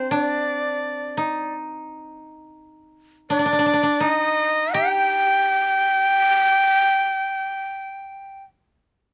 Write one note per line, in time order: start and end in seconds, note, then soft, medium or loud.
0.00 2.17 C4 medium
0.00 0.11 D4 medium
0.00 0.13 C5 medium
0.11 1.23 D4 medium
0.11 1.54 D5 medium
1.17 3.36 D#4 medium
3.30 3.39 D4 medium
3.30 4.02 D5 loud
3.39 3.45 D4 medium
3.46 3.52 D4 medium
3.53 3.58 D4 medium
3.59 3.66 D4 medium
3.66 3.73 D4 medium
3.73 3.83 D4 medium
3.83 4.06 D4 medium
4.00 6.35 D#4 medium
4.00 4.75 D#5 loud
4.73 8.40 G4 loud
4.73 8.43 G5 loud